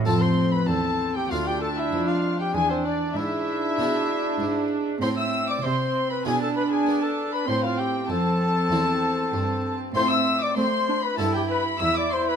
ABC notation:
X:1
M:4/4
L:1/16
Q:1/4=97
K:Am
V:1 name="Violin section"
a c'2 b a3 g f g a e2 f2 g | ^g c d2 e8- e3 z | c' e'2 d' c'3 b ^g a b g2 a2 b | c' f g2 a8- a3 z |
c' e'2 d' c'3 b a g b2 e' d' c' b |]
V:2 name="Violin section"
a c'2 b a3 g f g a e2 f2 g | ^g c d2 e8- e3 z | c' e'2 d' c'3 b ^g a b g2 a2 b | c' f g2 a8- a3 z |
c' e'2 d' c'3 b a g b2 e' d' c' b |]
V:3 name="Trumpet"
A c2 B A3 G F G A E2 F2 G | ^G C D2 E8- E3 z | c e2 d c3 B ^G A B G2 A2 B | c F G2 A8- A3 z |
c e2 d c3 B A G B2 e d c B |]
V:4 name="Viola section"
C4 C4 D8 | D4 D12 | C4 C4 D8 | C4 C12 |
C4 C2 D2 E4 E4 |]
V:5 name="Harpsichord"
[A,CF]8 [A,DF]8 | z8 [^G,B,D]8 | [CE]8 [B,DE]8 | z8 [CE]8 |
[A,CF]8 [B,EG]8 |]
V:6 name="Harpsichord" clef=bass
F,,4 E,,4 D,,4 F,,4 | E,,4 ^G,,4 B,,4 G,,4 | A,,4 C,4 B,,4 B,4 | A,,4 F,,4 E,,4 G,,4 |
A,,4 A,4 G,,4 E,,4 |]
V:7 name="Cello section" clef=bass
F,,4 E,,4 D,,4 F,,4 | E,,4 ^G,,4 B,,4 G,,4 | A,,4 C,4 B,,4 B,4 | A,,4 F,,4 E,,4 G,,4 |
A,,4 A,4 G,,4 E,,4 |]